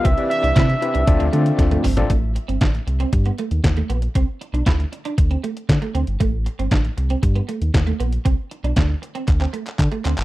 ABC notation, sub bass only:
X:1
M:4/4
L:1/16
Q:1/4=117
K:Ddor
V:1 name="Sub bass" clef=bass
C,, z2 C,, C,2 z C,, D,, D,, D,2 D,,2 G,,,2 | A,,,3 G,,, A,,,2 C,,2 G,,2 z ^D,, D,,2 _B,,,2 | C,, z2 B,,, D,,2 z2 D,,2 z2 D, z D,, G,,, | A,,,3 G,,, A,,,2 C,,2 G,,2 z ^D,, D,,2 _B,,,2 |
C,, z2 B,,, D,,2 z2 D,,2 z2 D, z D,, G,,, |]